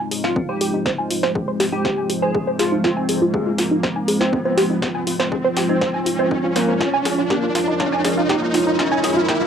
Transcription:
Already playing: F3 G#3 C4 D#4 F4 C5, riser
0.11 G#4, open hi-hat
0.24 F4 F5, snare
0.36 C4, kick
0.49 G4 C5 G5
0.61 G4, open hi-hat
0.74 D#4
0.86 C5, kick, snare
0.98 G#5
1.11 F4, open hi-hat
1.23 C5, snare
1.35 G#4, kick
1.48 C5
1.60 G4, snare, open hi-hat
1.73 D#4 G4 G5
1.85 C5, kick, snare
1.97 G#5
2.10 G4, open hi-hat
2.22 G#4 C5 G#5
2.35 G#4, kick
2.47 C5
2.59 F4 G#4 F5, snare, open hi-hat
2.72 D#4
2.84 C4 F4 C5, kick, snare
2.97 G#5
3.09 G#4, open hi-hat
3.22 F4
3.33 G#3 G4 G#4, kick
3.46 F4
3.58 F4, snare, open hi-hat
3.71 D#4
3.83 C5, kick, snare
3.96 G#5
4.08 G#4, open hi-hat
4.20 C4 F4 C5, snare
4.33 C4, kick
4.45 C4 C5
4.57 G4, snare, open hi-hat
4.70 D#4
4.82 C5, kick, snare
4.95 G#5
5.07 F4, open hi-hat
5.20 C5, snare
5.32 G#4, kick
5.45 C5
5.57 G4, snare, open hi-hat
5.69 C4 D#4 C5
5.81 C5, kick, snare
5.94 G#5
6.06 F4, open hi-hat
6.19 C4 C5
6.31 D#4, kick
6.44 F4
6.56 A#3 A#4 C5, snare, open hi-hat
6.69 C5
6.81 F3 C#4 F4 A#4 C#5 C6, kick, snare
6.94 G#5
6.98 C#4
7.05 G#4, snare, open hi-hat
7.18 F4
7.30 A#3 G4 A#4, kick, snare
7.43 F4
7.55 F4, snare, open hi-hat
7.68 D#4
7.80 C#4 F4 C#5, kick, snare
7.92 G#5
8.05 G#4, snare, open hi-hat
8.17 F4
8.29 A#3 G4 A#4, kick, snare
8.42 F4
8.54 F4, snare, open hi-hat
8.67 D#4
8.79 C#4 F4 C#5, kick, snare
8.92 G#5
9.04 G#4, snare, open hi-hat
9.16 F4
9.28 A#3 G4 A#4, kick, snare
9.41 F4

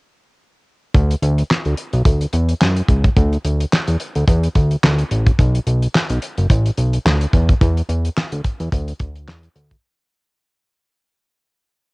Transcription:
0.94 D2, kick, closed hi-hat
1.11 closed hi-hat
1.22 D2, closed hi-hat
1.38 closed hi-hat
1.51 snare, clap
1.65 D2, closed hi-hat
1.77 closed hi-hat
1.93 B1, closed hi-hat
2.05 D2, kick, closed hi-hat
2.21 closed hi-hat
2.33 E2, closed hi-hat
2.49 closed hi-hat
2.61 F#2, snare, clap
2.76 closed hi-hat
2.89 C#2, kick, closed hi-hat
3.04 kick, closed hi-hat
3.17 D2, kick, closed hi-hat
3.33 closed hi-hat
3.45 D2, closed hi-hat
3.60 closed hi-hat
3.73 snare, clap
3.88 E2, closed hi-hat
4.00 closed hi-hat
4.15 D2, closed hi-hat
4.28 E2, kick, closed hi-hat
4.43 closed hi-hat
4.55 D2, kick, closed hi-hat
4.71 closed hi-hat
4.83 D2, snare, clap
4.99 closed hi-hat
5.11 A1, closed hi-hat
5.27 kick, closed hi-hat
5.39 B1, kick, closed hi-hat
5.55 closed hi-hat
5.67 B1, closed hi-hat
5.82 closed hi-hat
5.95 snare, clap
6.10 B1, closed hi-hat
6.22 closed hi-hat
6.38 F#1, closed hi-hat
6.50 A1, kick, closed hi-hat
6.66 closed hi-hat
6.78 B1, closed hi-hat
6.93 closed hi-hat
7.06 D2, snare, clap
7.21 closed hi-hat
7.33 E2, kick, closed hi-hat
7.49 kick, closed hi-hat
7.61 E2, kick, closed hi-hat
7.77 closed hi-hat
7.89 E2, closed hi-hat
8.05 closed hi-hat
8.17 snare, clap
8.32 D2, closed hi-hat
8.44 kick, closed hi-hat
8.60 E2, closed hi-hat
8.72 D2, kick, closed hi-hat
8.88 closed hi-hat
8.99 D2, kick, closed hi-hat
9.15 closed hi-hat
9.28 E2, snare, clap
9.43 closed hi-hat
9.55 D2, closed hi-hat
9.71 kick, closed hi-hat

